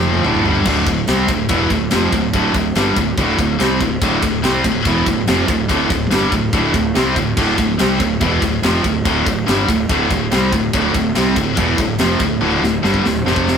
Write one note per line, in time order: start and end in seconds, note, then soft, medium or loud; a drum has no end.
0.00 0.20 F1 medium
0.00 0.23 F2 medium
0.00 0.23 C3 loud
0.00 0.24 F3 loud
0.00 high tom medium
0.14 high tom medium
0.24 0.44 D1 loud
0.24 0.44 D2 medium
0.24 0.45 A2 loud
0.24 0.44 D3 loud
0.24 mid tom loud
0.35 mid tom medium
0.45 0.64 G1 medium
0.45 0.65 G2 medium
0.45 0.66 D3 loud
0.45 0.66 G3 loud
0.45 floor tom loud
0.55 floor tom medium
0.65 0.85 D1 medium
0.65 0.86 D2 loud
0.65 0.87 A2 loud
0.65 0.87 D3 loud
0.65 kick loud
0.65 crash loud
0.86 1.06 D1 medium
0.86 1.04 D2 medium
0.86 1.04 A2 medium
0.86 kick medium
0.86 ride medium
1.07 1.27 C2 loud
1.07 1.28 C3 medium
1.07 1.29 G3 medium
1.07 1.29 C4 loud
1.07 snare loud
1.07 ride loud
1.28 1.48 D1 medium
1.28 1.46 D2 medium
1.28 1.46 A2 medium
1.28 kick loud
1.28 ride medium
1.49 1.69 E1 medium
1.49 1.70 E2 loud
1.49 1.70 B2 loud
1.49 1.70 E3 loud
1.49 kick loud
1.49 ride medium
1.70 1.90 D1 medium
1.70 1.87 D2 medium
1.70 1.88 A2 medium
1.70 kick medium
1.70 ride medium
1.91 2.11 F1 medium
1.91 2.12 F2 medium
1.91 2.12 C3 medium
1.91 2.12 F3 medium
1.91 snare loud
1.91 ride loud
2.12 2.32 D1 medium
2.12 2.30 D2 medium
2.12 2.30 A2 medium
2.12 kick medium
2.12 ride medium
2.33 2.53 D1 medium
2.33 2.54 D2 loud
2.33 2.54 A2 loud
2.33 2.55 D3 medium
2.33 kick loud
2.33 ride medium
2.54 2.74 D1 medium
2.54 2.71 D2 medium
2.54 2.71 A2 medium
2.54 kick medium
2.54 ride medium
2.75 2.95 G1 medium
2.75 2.96 G2 medium
2.75 2.96 D3 medium
2.75 2.97 G3 medium
2.75 snare loud
2.75 ride loud
2.97 3.16 D1 medium
2.97 3.14 D2 medium
2.97 3.14 A2 medium
2.97 kick loud
2.97 ride medium
3.18 3.37 D1 loud
3.18 3.38 D2 medium
3.18 3.39 A2 loud
3.18 3.39 D3 loud
3.18 kick loud
3.18 ride medium
3.38 3.58 D1 medium
3.38 3.56 D2 medium
3.38 3.56 A2 medium
3.38 kick medium
3.38 ride medium
3.59 3.79 C2 medium
3.59 3.79 C3 medium
3.59 3.80 G3 medium
3.59 3.80 C4 loud
3.59 snare loud
3.59 ride loud
3.81 4.00 D1 medium
3.81 3.98 D2 medium
3.81 3.98 A2 medium
3.81 kick medium
3.81 ride medium
4.02 4.21 D1 medium
4.02 4.22 D2 medium
4.02 4.22 A2 loud
4.02 4.22 D3 loud
4.02 kick loud
4.02 ride loud
4.23 4.42 D1 medium
4.23 4.39 D2 medium
4.23 4.40 A2 medium
4.23 kick loud
4.23 ride medium
4.43 4.63 C2 loud
4.43 4.63 C3 medium
4.43 4.64 G3 loud
4.43 4.64 C4 loud
4.43 snare loud
4.43 ride loud
4.64 4.84 D1 medium
4.64 4.81 D2 medium
4.64 4.81 A2 medium
4.64 kick loud
4.64 ride medium
4.85 5.05 E1 medium
4.85 5.05 E2 loud
4.85 5.06 B2 loud
4.85 5.06 E3 loud
4.85 kick loud
4.85 ride medium
5.06 5.26 D1 medium
5.06 5.23 D2 medium
5.06 5.23 A2 medium
5.06 kick medium
5.06 ride medium
5.27 5.47 F1 loud
5.27 5.48 F2 medium
5.27 5.48 C3 medium
5.27 5.48 F3 medium
5.27 snare loud
5.27 ride loud
5.48 5.68 D1 medium
5.48 5.65 D2 medium
5.48 5.65 A2 medium
5.48 kick loud
5.48 ride medium
5.69 5.89 D1 medium
5.69 5.89 D2 loud
5.69 5.90 A2 loud
5.69 5.90 D3 loud
5.69 kick loud
5.69 ride loud
5.90 6.09 D1 medium
5.90 6.07 D2 medium
5.90 6.07 A2 medium
5.90 kick loud
5.90 ride medium
6.10 6.30 G1 loud
6.10 6.31 G2 medium
6.10 6.31 D3 loud
6.10 6.32 G3 medium
6.10 snare loud
6.10 ride loud
6.32 6.51 D1 medium
6.32 6.49 D2 medium
6.32 6.49 A2 medium
6.32 kick medium
6.32 ride medium
6.53 6.72 D1 loud
6.53 6.73 D2 medium
6.53 6.73 A2 loud
6.53 6.74 D3 loud
6.53 kick loud
6.53 ride medium
6.74 6.93 D1 medium
6.74 6.91 D2 medium
6.74 6.91 A2 medium
6.74 kick medium
6.74 ride medium
6.95 7.14 C2 medium
6.95 7.16 C3 medium
6.95 7.16 G3 medium
6.95 7.16 C4 medium
6.95 snare loud
6.95 ride medium
7.16 7.35 D1 medium
7.16 7.33 D2 medium
7.16 7.33 A2 medium
7.16 kick medium
7.16 ride medium
7.37 7.57 D1 medium
7.37 7.57 D2 medium
7.37 7.58 A2 medium
7.37 7.58 D3 loud
7.37 kick loud
7.37 crash medium
7.58 7.78 D1 medium
7.58 7.75 D2 medium
7.58 7.75 A2 medium
7.58 kick medium
7.58 ride medium
7.79 7.99 C2 medium
7.79 7.99 C3 medium
7.79 8.00 G3 medium
7.79 8.00 C4 medium
7.79 snare loud
7.79 ride loud
8.00 8.19 D1 medium
8.00 8.17 D2 medium
8.00 8.17 A2 medium
8.00 kick medium
8.00 ride medium
8.21 8.40 E1 loud
8.21 8.41 E2 medium
8.21 8.42 B2 loud
8.21 8.42 E3 loud
8.21 kick loud
8.21 ride loud
8.42 8.61 D1 medium
8.42 8.59 D2 medium
8.42 8.59 A2 medium
8.42 kick medium
8.42 ride medium
8.63 8.83 F1 loud
8.63 8.83 F2 loud
8.63 8.84 C3 medium
8.63 8.84 F3 loud
8.63 snare loud
8.63 ride loud
8.84 9.04 D1 medium
8.84 9.01 D2 medium
8.84 9.01 A2 medium
8.84 kick medium
8.84 ride medium
9.05 9.24 D1 medium
9.05 9.25 D2 medium
9.05 9.26 A2 loud
9.05 9.26 D3 loud
9.05 kick loud
9.05 ride medium
9.26 9.46 D1 medium
9.26 9.43 D2 medium
9.26 9.43 A2 medium
9.26 kick medium
9.26 ride medium
9.47 9.67 G1 loud
9.47 9.67 G2 loud
9.47 9.68 D3 loud
9.47 9.68 G3 loud
9.47 snare loud
9.47 ride loud
9.68 9.88 D1 medium
9.68 9.85 D2 medium
9.68 9.85 A2 medium
9.68 kick medium
9.68 ride medium
9.89 10.09 D1 loud
9.89 10.09 D2 medium
9.89 10.10 A2 loud
9.89 10.10 D3 loud
9.89 kick loud
9.89 ride medium
10.11 10.30 D1 medium
10.11 10.27 D2 medium
10.11 10.27 A2 medium
10.11 kick medium
10.11 ride medium
10.31 10.51 C2 medium
10.31 10.52 C3 medium
10.31 10.52 G3 medium
10.31 10.52 C4 medium
10.31 snare loud
10.31 ride loud
10.52 10.72 D1 medium
10.52 10.69 D2 medium
10.52 10.69 A2 medium
10.52 kick medium
10.52 ride medium
10.73 10.93 D1 medium
10.73 10.93 D2 medium
10.73 10.93 A2 loud
10.73 10.94 D3 loud
10.73 kick loud
10.73 ride loud
10.94 11.14 D1 medium
10.94 11.11 D2 medium
10.94 11.11 A2 medium
10.94 kick loud
10.94 ride medium
11.15 11.35 C2 medium
11.15 11.36 C3 loud
11.15 11.36 G3 medium
11.15 11.36 C4 loud
11.15 snare loud
11.15 ride loud
11.36 11.56 D1 medium
11.36 11.54 D2 medium
11.36 11.54 A2 medium
11.36 kick loud
11.36 ride medium
11.57 11.77 E1 loud
11.57 11.78 E2 medium
11.57 11.78 B2 loud
11.57 11.78 E3 loud
11.57 kick loud
11.57 ride medium
11.78 11.98 D1 medium
11.78 11.96 D2 medium
11.78 11.96 A2 medium
11.78 kick medium
11.78 ride medium
11.99 12.19 F1 loud
11.99 12.20 F2 medium
11.99 12.20 C3 medium
11.99 12.21 F3 loud
11.99 snare loud
11.99 ride loud
12.20 12.40 D1 medium
12.20 12.38 D2 medium
12.20 12.38 A2 medium
12.20 kick medium
12.20 ride medium
12.40 12.61 D1 loud
12.40 12.62 D2 medium
12.40 12.62 A2 loud
12.40 12.63 D3 loud
12.40 high tom medium
12.52 high tom medium
12.62 12.82 D1 medium
12.62 12.80 D2 medium
12.62 12.80 A2 medium
12.62 snare medium
12.73 high tom medium
12.83 13.03 G1 loud
12.83 13.04 G2 medium
12.83 13.04 D3 loud
12.83 13.05 G3 medium
12.83 snare medium
12.94 kick medium
13.05 13.24 D1 medium
13.05 13.22 D2 medium
13.05 13.22 A2 medium
13.05 snare medium
13.15 mid tom medium
13.25 13.58 F1 medium
13.25 13.58 F2 medium
13.25 13.58 C3 loud
13.25 13.58 F3 medium
13.25 snare medium
13.36 kick medium
13.48 snare medium